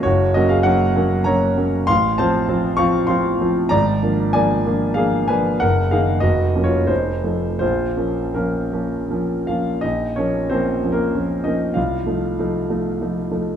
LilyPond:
<<
  \new Staff \with { instrumentName = "Grand piano" } { \time 3/4 \key bes \minor \tempo 4 = 96 <ges' des''>8 <ges' ees''>16 <aes' f''>16 <bes' ges''>4 <des'' bes''>4 | <f'' c'''>8 <c'' a''>4 <f'' des'''>8 <f'' c'''>4 | <d'' bes''>4 <d'' aes''>4 <aes' f''>8 <ces'' aes''>8 | <bes' ges''>8 <aes' f''>8 \tuplet 3/2 { <ges' ees''>4 <f' des''>8 } <ees' c''>4 |
<f' c''>4 <des' bes'>4. <f' f''>8 | <ees' ees''>8 <des' des''>8 \tuplet 3/2 { <c' c''>4 <bes bes'>8~ } <bes bes'>8 <ees' ees''>8 | <f' f''>2~ <f' f''>8 r8 | }
  \new Staff \with { instrumentName = "Grand piano" } { \time 3/4 \key bes \minor ges,,8 <ges bes des'>8 <ges bes des'>8 <ges bes des'>8 <ges bes des'>8 <ges bes des'>8 | a,,8 <f c' f'>8 <f c' f'>8 <f c' f'>8 <f c' f'>8 <f c' f'>8 | aes,,8 <f bes d'>8 <f bes d'>8 <f bes d'>8 <f bes d'>8 <f bes d'>8 | ges,,8 <ees bes ees'>8 f,,8 <f bes des'>8 f,,8 <f a ees'>8 |
bes,,8 <f bes des'>8 <f bes>8 <f bes des'>8 <f bes des'>8 <f bes des'>8 | bes,,8 <f bes>8 <f bes des'>8 <f bes des'>8 <f bes des'>8 <f bes des'>8 | c,8 <f a ees'>8 <f a ees'>8 <f a ees'>8 <f a ees'>8 <f a ees'>8 | }
>>